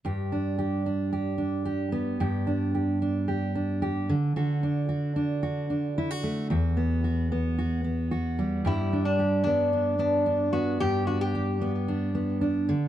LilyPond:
<<
  \new Staff \with { instrumentName = "Resonator guitar played with a steel bar" } { \time 4/4 \key g \lydian \tempo 4 = 112 r1 | r1 | r1 | r1 |
e'8. d'8. d'4 d'4 fis'8 | g'8 fis'16 g'4 r2 r16 | }
  \new Staff \with { instrumentName = "Steel-string acoustic guitar" } { \time 4/4 \key g \lydian <g, g'>8 d'8 g'8 d'8 g'8 d'8 g'8 b8 | <g, g'>8 d'8 g'8 d'8 g'8 d'8 g'8 d8 | <d fis'>8 d'8 fis'8 d'8 fis'8 d'8 e'16 fis'16 a8 | <e, fis'>8 b8 fis'8 b8 fis'8 b8 fis'8 g8 |
<g, g'>8 d'8 g'8 b8 d'8 b8 d'8 b8 | <g, g'>8 d'8 g'8 b8 d'8 b8 d'8 d8 | }
>>